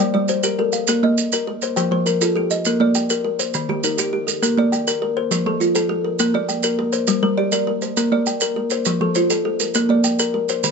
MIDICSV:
0, 0, Header, 1, 4, 480
1, 0, Start_track
1, 0, Key_signature, -2, "major"
1, 0, Tempo, 295567
1, 1432, Time_signature, 12, 3, 24, 8
1, 17396, End_track
2, 0, Start_track
2, 0, Title_t, "Kalimba"
2, 0, Program_c, 0, 108
2, 0, Note_on_c, 0, 55, 77
2, 0, Note_on_c, 0, 72, 68
2, 0, Note_on_c, 0, 74, 62
2, 206, Note_off_c, 0, 74, 0
2, 225, Note_on_c, 0, 74, 63
2, 227, Note_off_c, 0, 72, 0
2, 466, Note_off_c, 0, 55, 0
2, 474, Note_on_c, 0, 72, 63
2, 708, Note_on_c, 0, 70, 72
2, 949, Note_off_c, 0, 74, 0
2, 952, Note_on_c, 0, 69, 58
2, 1190, Note_off_c, 0, 70, 0
2, 1193, Note_off_c, 0, 72, 0
2, 1439, Note_on_c, 0, 70, 65
2, 1440, Note_on_c, 0, 58, 80
2, 1673, Note_off_c, 0, 69, 0
2, 1682, Note_on_c, 0, 75, 59
2, 1916, Note_off_c, 0, 58, 0
2, 2144, Note_off_c, 0, 70, 0
2, 2164, Note_on_c, 0, 70, 76
2, 2398, Note_off_c, 0, 75, 0
2, 2639, Note_off_c, 0, 70, 0
2, 2647, Note_on_c, 0, 72, 66
2, 2854, Note_off_c, 0, 72, 0
2, 2874, Note_on_c, 0, 72, 60
2, 2875, Note_on_c, 0, 53, 79
2, 3097, Note_off_c, 0, 72, 0
2, 3116, Note_on_c, 0, 72, 63
2, 3353, Note_on_c, 0, 70, 62
2, 3354, Note_off_c, 0, 53, 0
2, 3602, Note_on_c, 0, 69, 77
2, 3835, Note_off_c, 0, 72, 0
2, 3842, Note_on_c, 0, 67, 57
2, 4073, Note_off_c, 0, 70, 0
2, 4077, Note_off_c, 0, 69, 0
2, 4327, Note_on_c, 0, 70, 65
2, 4328, Note_on_c, 0, 58, 81
2, 4557, Note_off_c, 0, 67, 0
2, 4560, Note_on_c, 0, 74, 66
2, 4800, Note_off_c, 0, 58, 0
2, 5020, Note_off_c, 0, 70, 0
2, 5040, Note_on_c, 0, 70, 80
2, 5275, Note_off_c, 0, 74, 0
2, 5512, Note_on_c, 0, 72, 66
2, 5515, Note_off_c, 0, 70, 0
2, 5760, Note_on_c, 0, 51, 77
2, 5991, Note_off_c, 0, 72, 0
2, 6000, Note_on_c, 0, 67, 67
2, 6234, Note_off_c, 0, 51, 0
2, 6242, Note_on_c, 0, 70, 68
2, 6462, Note_off_c, 0, 67, 0
2, 6481, Note_on_c, 0, 67, 81
2, 6954, Note_off_c, 0, 67, 0
2, 6954, Note_off_c, 0, 70, 0
2, 7184, Note_on_c, 0, 58, 78
2, 7189, Note_on_c, 0, 70, 72
2, 7445, Note_on_c, 0, 74, 66
2, 7665, Note_off_c, 0, 58, 0
2, 7900, Note_off_c, 0, 70, 0
2, 7920, Note_on_c, 0, 70, 80
2, 8154, Note_off_c, 0, 74, 0
2, 8392, Note_off_c, 0, 70, 0
2, 8393, Note_on_c, 0, 72, 69
2, 8625, Note_on_c, 0, 53, 84
2, 8868, Note_off_c, 0, 72, 0
2, 8876, Note_on_c, 0, 69, 65
2, 9104, Note_off_c, 0, 53, 0
2, 9329, Note_off_c, 0, 69, 0
2, 9348, Note_on_c, 0, 69, 83
2, 9825, Note_off_c, 0, 69, 0
2, 10067, Note_on_c, 0, 58, 90
2, 10069, Note_on_c, 0, 70, 73
2, 10309, Note_on_c, 0, 74, 68
2, 10544, Note_off_c, 0, 58, 0
2, 10761, Note_off_c, 0, 70, 0
2, 10781, Note_on_c, 0, 70, 82
2, 11024, Note_off_c, 0, 74, 0
2, 11249, Note_on_c, 0, 72, 70
2, 11260, Note_off_c, 0, 70, 0
2, 11496, Note_on_c, 0, 55, 80
2, 11734, Note_off_c, 0, 72, 0
2, 11739, Note_on_c, 0, 70, 68
2, 11977, Note_on_c, 0, 74, 69
2, 11978, Note_off_c, 0, 55, 0
2, 12205, Note_off_c, 0, 70, 0
2, 12224, Note_on_c, 0, 70, 78
2, 12699, Note_off_c, 0, 74, 0
2, 12702, Note_off_c, 0, 70, 0
2, 12946, Note_on_c, 0, 70, 73
2, 12948, Note_on_c, 0, 58, 80
2, 13192, Note_on_c, 0, 74, 65
2, 13424, Note_off_c, 0, 58, 0
2, 13648, Note_off_c, 0, 70, 0
2, 13668, Note_on_c, 0, 70, 82
2, 13907, Note_off_c, 0, 74, 0
2, 14145, Note_off_c, 0, 70, 0
2, 14155, Note_on_c, 0, 72, 67
2, 14396, Note_on_c, 0, 53, 81
2, 14629, Note_off_c, 0, 72, 0
2, 14633, Note_on_c, 0, 69, 66
2, 14870, Note_off_c, 0, 53, 0
2, 14871, Note_on_c, 0, 72, 65
2, 15086, Note_off_c, 0, 69, 0
2, 15106, Note_on_c, 0, 69, 80
2, 15586, Note_off_c, 0, 69, 0
2, 15589, Note_off_c, 0, 72, 0
2, 15836, Note_on_c, 0, 70, 71
2, 15841, Note_on_c, 0, 58, 84
2, 16078, Note_on_c, 0, 74, 65
2, 16315, Note_off_c, 0, 58, 0
2, 16538, Note_off_c, 0, 70, 0
2, 16558, Note_on_c, 0, 70, 82
2, 16794, Note_off_c, 0, 74, 0
2, 17035, Note_off_c, 0, 70, 0
2, 17045, Note_on_c, 0, 72, 69
2, 17276, Note_on_c, 0, 51, 79
2, 17396, Note_off_c, 0, 51, 0
2, 17396, Note_off_c, 0, 72, 0
2, 17396, End_track
3, 0, Start_track
3, 0, Title_t, "Kalimba"
3, 0, Program_c, 1, 108
3, 0, Note_on_c, 1, 79, 66
3, 237, Note_on_c, 1, 55, 83
3, 475, Note_off_c, 1, 79, 0
3, 476, Note_on_c, 1, 72, 70
3, 714, Note_on_c, 1, 67, 62
3, 715, Note_off_c, 1, 55, 0
3, 958, Note_on_c, 1, 70, 80
3, 1182, Note_on_c, 1, 77, 62
3, 1195, Note_off_c, 1, 72, 0
3, 1434, Note_off_c, 1, 67, 0
3, 1435, Note_off_c, 1, 70, 0
3, 1674, Note_on_c, 1, 58, 81
3, 1908, Note_off_c, 1, 77, 0
3, 2153, Note_off_c, 1, 58, 0
3, 2393, Note_on_c, 1, 70, 74
3, 2864, Note_on_c, 1, 79, 66
3, 2873, Note_off_c, 1, 70, 0
3, 3106, Note_on_c, 1, 53, 76
3, 3345, Note_on_c, 1, 70, 62
3, 3349, Note_off_c, 1, 79, 0
3, 3590, Note_off_c, 1, 53, 0
3, 3591, Note_on_c, 1, 65, 58
3, 3825, Note_on_c, 1, 69, 71
3, 4069, Note_off_c, 1, 70, 0
3, 4072, Note_on_c, 1, 75, 63
3, 4308, Note_off_c, 1, 69, 0
3, 4312, Note_off_c, 1, 65, 0
3, 4548, Note_on_c, 1, 58, 84
3, 4792, Note_off_c, 1, 75, 0
3, 4795, Note_on_c, 1, 79, 64
3, 5030, Note_off_c, 1, 58, 0
3, 5269, Note_on_c, 1, 70, 76
3, 5512, Note_off_c, 1, 79, 0
3, 5750, Note_off_c, 1, 70, 0
3, 5993, Note_on_c, 1, 51, 85
3, 6233, Note_on_c, 1, 63, 67
3, 6457, Note_on_c, 1, 70, 64
3, 6471, Note_off_c, 1, 51, 0
3, 6705, Note_on_c, 1, 67, 81
3, 6932, Note_on_c, 1, 69, 69
3, 6950, Note_off_c, 1, 63, 0
3, 7181, Note_off_c, 1, 70, 0
3, 7186, Note_off_c, 1, 67, 0
3, 7430, Note_on_c, 1, 58, 84
3, 7658, Note_off_c, 1, 69, 0
3, 7670, Note_on_c, 1, 79, 71
3, 7907, Note_off_c, 1, 58, 0
3, 8153, Note_on_c, 1, 70, 83
3, 8387, Note_off_c, 1, 79, 0
3, 8628, Note_off_c, 1, 70, 0
3, 8635, Note_on_c, 1, 72, 69
3, 8872, Note_on_c, 1, 53, 88
3, 9099, Note_on_c, 1, 65, 69
3, 9109, Note_off_c, 1, 72, 0
3, 9334, Note_on_c, 1, 72, 64
3, 9347, Note_off_c, 1, 53, 0
3, 9570, Note_on_c, 1, 69, 83
3, 9817, Note_on_c, 1, 70, 65
3, 9820, Note_off_c, 1, 65, 0
3, 10055, Note_off_c, 1, 69, 0
3, 10057, Note_off_c, 1, 72, 0
3, 10299, Note_on_c, 1, 58, 87
3, 10534, Note_on_c, 1, 79, 65
3, 10539, Note_off_c, 1, 70, 0
3, 10779, Note_off_c, 1, 58, 0
3, 11023, Note_on_c, 1, 70, 84
3, 11257, Note_off_c, 1, 79, 0
3, 11498, Note_on_c, 1, 72, 70
3, 11501, Note_off_c, 1, 70, 0
3, 11736, Note_on_c, 1, 55, 84
3, 11979, Note_off_c, 1, 72, 0
3, 11980, Note_on_c, 1, 67, 73
3, 12216, Note_on_c, 1, 74, 67
3, 12218, Note_off_c, 1, 55, 0
3, 12459, Note_on_c, 1, 70, 81
3, 12700, Note_off_c, 1, 67, 0
3, 12705, Note_on_c, 1, 72, 67
3, 12938, Note_off_c, 1, 74, 0
3, 12940, Note_off_c, 1, 70, 0
3, 13185, Note_on_c, 1, 58, 85
3, 13423, Note_off_c, 1, 72, 0
3, 13426, Note_on_c, 1, 79, 67
3, 13663, Note_off_c, 1, 58, 0
3, 13906, Note_on_c, 1, 70, 74
3, 14144, Note_off_c, 1, 79, 0
3, 14385, Note_off_c, 1, 70, 0
3, 14391, Note_on_c, 1, 72, 69
3, 14631, Note_on_c, 1, 53, 89
3, 14867, Note_off_c, 1, 72, 0
3, 14874, Note_on_c, 1, 65, 69
3, 15108, Note_off_c, 1, 53, 0
3, 15116, Note_on_c, 1, 72, 65
3, 15348, Note_on_c, 1, 69, 80
3, 15590, Note_off_c, 1, 65, 0
3, 15590, Note_on_c, 1, 70, 66
3, 15827, Note_off_c, 1, 69, 0
3, 15831, Note_off_c, 1, 72, 0
3, 16062, Note_on_c, 1, 58, 82
3, 16308, Note_on_c, 1, 79, 64
3, 16310, Note_off_c, 1, 70, 0
3, 16546, Note_off_c, 1, 58, 0
3, 16792, Note_on_c, 1, 70, 76
3, 17030, Note_off_c, 1, 79, 0
3, 17272, Note_off_c, 1, 70, 0
3, 17278, Note_on_c, 1, 72, 69
3, 17396, Note_off_c, 1, 72, 0
3, 17396, End_track
4, 0, Start_track
4, 0, Title_t, "Drums"
4, 459, Note_on_c, 9, 70, 52
4, 621, Note_off_c, 9, 70, 0
4, 702, Note_on_c, 9, 70, 68
4, 865, Note_off_c, 9, 70, 0
4, 1179, Note_on_c, 9, 70, 56
4, 1341, Note_off_c, 9, 70, 0
4, 1417, Note_on_c, 9, 70, 80
4, 1580, Note_off_c, 9, 70, 0
4, 1912, Note_on_c, 9, 70, 58
4, 2075, Note_off_c, 9, 70, 0
4, 2148, Note_on_c, 9, 70, 75
4, 2310, Note_off_c, 9, 70, 0
4, 2628, Note_on_c, 9, 70, 55
4, 2790, Note_off_c, 9, 70, 0
4, 2871, Note_on_c, 9, 70, 71
4, 3033, Note_off_c, 9, 70, 0
4, 3351, Note_on_c, 9, 70, 58
4, 3513, Note_off_c, 9, 70, 0
4, 3593, Note_on_c, 9, 70, 75
4, 3755, Note_off_c, 9, 70, 0
4, 4069, Note_on_c, 9, 70, 62
4, 4231, Note_off_c, 9, 70, 0
4, 4302, Note_on_c, 9, 70, 76
4, 4465, Note_off_c, 9, 70, 0
4, 4786, Note_on_c, 9, 70, 55
4, 4949, Note_off_c, 9, 70, 0
4, 5029, Note_on_c, 9, 70, 74
4, 5191, Note_off_c, 9, 70, 0
4, 5512, Note_on_c, 9, 70, 56
4, 5675, Note_off_c, 9, 70, 0
4, 5745, Note_on_c, 9, 70, 76
4, 5907, Note_off_c, 9, 70, 0
4, 6229, Note_on_c, 9, 70, 61
4, 6392, Note_off_c, 9, 70, 0
4, 6469, Note_on_c, 9, 70, 78
4, 6631, Note_off_c, 9, 70, 0
4, 6950, Note_on_c, 9, 70, 63
4, 7113, Note_off_c, 9, 70, 0
4, 7194, Note_on_c, 9, 70, 84
4, 7357, Note_off_c, 9, 70, 0
4, 7677, Note_on_c, 9, 70, 64
4, 7839, Note_off_c, 9, 70, 0
4, 7916, Note_on_c, 9, 70, 78
4, 8078, Note_off_c, 9, 70, 0
4, 8630, Note_on_c, 9, 70, 73
4, 8793, Note_off_c, 9, 70, 0
4, 9108, Note_on_c, 9, 70, 58
4, 9271, Note_off_c, 9, 70, 0
4, 9342, Note_on_c, 9, 70, 65
4, 9505, Note_off_c, 9, 70, 0
4, 10053, Note_on_c, 9, 70, 77
4, 10215, Note_off_c, 9, 70, 0
4, 10540, Note_on_c, 9, 70, 55
4, 10703, Note_off_c, 9, 70, 0
4, 10767, Note_on_c, 9, 70, 71
4, 10929, Note_off_c, 9, 70, 0
4, 11248, Note_on_c, 9, 70, 52
4, 11410, Note_off_c, 9, 70, 0
4, 11485, Note_on_c, 9, 70, 72
4, 11647, Note_off_c, 9, 70, 0
4, 12211, Note_on_c, 9, 70, 70
4, 12374, Note_off_c, 9, 70, 0
4, 12694, Note_on_c, 9, 70, 56
4, 12856, Note_off_c, 9, 70, 0
4, 12940, Note_on_c, 9, 70, 77
4, 13103, Note_off_c, 9, 70, 0
4, 13420, Note_on_c, 9, 70, 59
4, 13582, Note_off_c, 9, 70, 0
4, 13649, Note_on_c, 9, 70, 81
4, 13812, Note_off_c, 9, 70, 0
4, 14132, Note_on_c, 9, 70, 58
4, 14294, Note_off_c, 9, 70, 0
4, 14374, Note_on_c, 9, 70, 80
4, 14537, Note_off_c, 9, 70, 0
4, 14859, Note_on_c, 9, 70, 64
4, 15021, Note_off_c, 9, 70, 0
4, 15104, Note_on_c, 9, 70, 77
4, 15266, Note_off_c, 9, 70, 0
4, 15586, Note_on_c, 9, 70, 66
4, 15749, Note_off_c, 9, 70, 0
4, 15823, Note_on_c, 9, 70, 87
4, 15985, Note_off_c, 9, 70, 0
4, 16304, Note_on_c, 9, 70, 66
4, 16466, Note_off_c, 9, 70, 0
4, 16549, Note_on_c, 9, 70, 85
4, 16712, Note_off_c, 9, 70, 0
4, 17033, Note_on_c, 9, 70, 63
4, 17196, Note_off_c, 9, 70, 0
4, 17273, Note_on_c, 9, 70, 80
4, 17396, Note_off_c, 9, 70, 0
4, 17396, End_track
0, 0, End_of_file